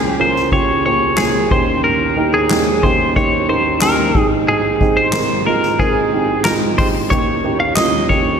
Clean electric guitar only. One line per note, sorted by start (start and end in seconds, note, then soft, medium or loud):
0.00 0.05 G#4 medium
0.05 0.16 G4 medium
0.21 0.52 C5 medium
0.53 0.85 C#5 medium
0.86 1.19 C#5 medium
1.17 1.52 G#4 medium
1.52 1.84 C5 medium
1.84 2.30 A#4 medium
2.34 2.85 G#4 medium
2.83 3.14 C5 medium
3.16 3.47 C#5 loud
3.49 3.82 C5 medium
3.82 4.28 A#4 medium
4.48 4.99 G#4 medium
4.97 5.43 C5 loud
5.47 5.81 A#4 medium
5.79 6.41 G#4 loud
6.45 6.54 A#4 medium
6.78 6.87 C5 medium
7.10 7.60 C#5 medium
7.60 7.75 F5 loud
7.76 8.07 D#5 medium
8.09 8.40 C#5 medium